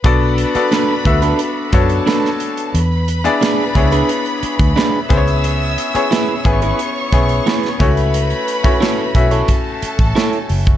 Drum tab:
HH |x-xxx-xxx-xxx-xx|x-xxx-xxxxxxx-xx|x-xxx-xxx-xxxxxx|xxxxx-xxx-xxxxox|
SD |----o-------oo--|----o-------o---|----o-------oo--|----o-------o---|
BD |o-----o---o-----|------o----o--o-|------o---o---o-|---o--o-o--o---o|